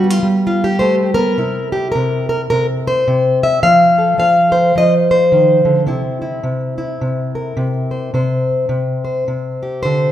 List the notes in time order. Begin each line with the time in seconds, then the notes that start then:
Already playing: G3 D4
0.04 B3
0.10 F4
0.23 G3
0.47 F4
0.64 G4
0.79 A3 C5
1.14 B3 A#4
1.38 C3 E4
1.72 G4
1.92 C3 A#4
2.29 A#4
2.50 C3 A#4
2.87 C5
3.08 C3
3.43 E5
3.63 F3 F5
3.98 A4
4.18 F3 F5
4.52 C5
4.76 F3 D#5
5.11 C5
5.32 D#3
5.65 D3
5.87 C3 E4
6.22 E4
6.43 C3
6.78 E4
7.01 C3
7.35 A#4
7.57 C3
7.91 C5
8.14 C3 C5
8.69 C3
9.05 C5
9.28 C3
9.63 G4
9.83 D3 C5